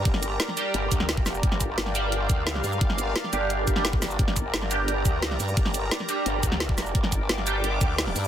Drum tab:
HH |x-x-x-x-x-x-x-o-|x-x-x-x-x-x-x-o-|x-x-x-x-x-x-x-o-|x-x-x-x-x-x-x-o-|
SH |--x---x---x---xx|--x---x---x---xx|--x---x---x---xx|--x---x---x---xx|
SD |-o--oo-----oo-o-|-o--oo------oo--|-o--oo-----oo-o-|-o--oo------oo--|
BD |o---------o--o--|o-o-------o-----|o---------o--o--|o-o-------o-----|

HH |x-x-x-x-x-x-x-o-|x-x-x-x-x-x-x-o-|
SH |--x---x---x---xx|--x---x---x---xx|
SD |-o--oo-----oo-o-|-o--oo------oo--|
BD |o---------o--o--|o-o-------o-----|